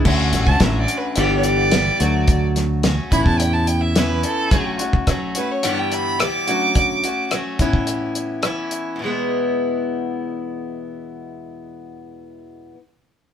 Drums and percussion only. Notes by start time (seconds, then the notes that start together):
0.05 kick, crash
0.33 snare, closed hi-hat
0.47 kick
0.60 kick, snare, closed hi-hat
0.88 closed hi-hat
1.16 closed hi-hat
1.43 closed hi-hat
1.72 snare, closed hi-hat
2.00 closed hi-hat
2.28 kick, closed hi-hat
2.56 snare, closed hi-hat
2.83 snare, closed hi-hat
3.12 kick, closed hi-hat
3.26 kick
3.40 closed hi-hat
3.67 closed hi-hat
3.96 snare, closed hi-hat
4.23 closed hi-hat
4.51 kick, closed hi-hat
4.79 closed hi-hat
4.93 kick
5.07 kick, cross-stick, closed hi-hat
5.35 closed hi-hat
5.63 closed hi-hat
5.92 closed hi-hat
6.20 cross-stick, closed hi-hat
6.48 closed hi-hat
6.75 kick, closed hi-hat
7.04 closed hi-hat
7.31 cross-stick, closed hi-hat
7.59 kick, closed hi-hat
7.73 kick
7.87 closed hi-hat
8.15 closed hi-hat
8.43 cross-stick, closed hi-hat
8.71 closed hi-hat